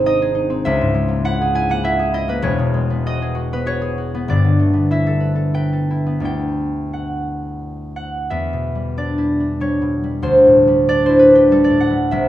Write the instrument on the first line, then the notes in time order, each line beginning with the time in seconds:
harp
Already playing: G#1 G#2 D#3 G#3 C4 G#4 A#4 C5
0.06 D#4 D#5
0.22 G#4
0.35 D#4
0.50 C4
0.65 C#2 E5
0.81 G#2
0.94 G#3
1.08 A#3
1.25 E4 F#5
1.41 G#4
1.55 E4 G#5
1.69 A#3 F#5
1.84 E4 E5
1.99 G#4
2.14 E4 D#5
2.28 A#3 B4
2.42 E1 E2 C#5
2.59 B2
2.74 G#3
2.90 B3
3.06 F#4 D#5
3.22 G#4
3.35 F#4
3.53 B3 B4
3.66 F#4 C#5
3.82 G#4
3.98 F#4
4.15 B3
4.28 G1 G2 D5
4.45 D3
4.59 A3
4.73 B3
4.91 E4 E5
5.07 A4
5.20 B4
5.35 A4
5.54 B4 G5
5.73 A4
5.90 E4
6.06 B3
6.20 D2 A3 D4 E4
6.25 G5
6.93 F#5
7.96 F#5
8.30 E2 E5
8.53 B2
8.75 G3
8.97 D4 D5
9.18 E4
9.40 D4
9.60 G3 C#5
9.82 B2
10.04 G3
10.22 D2 C5
10.46 A2
10.67 G3
10.89 D4 D5
11.06 E4 C5
11.19 B4
11.31 D4
11.35 G4
11.51 G3 A4
11.64 D5
11.70 A2
11.80 F#5
11.90 G3
12.11 C2 E5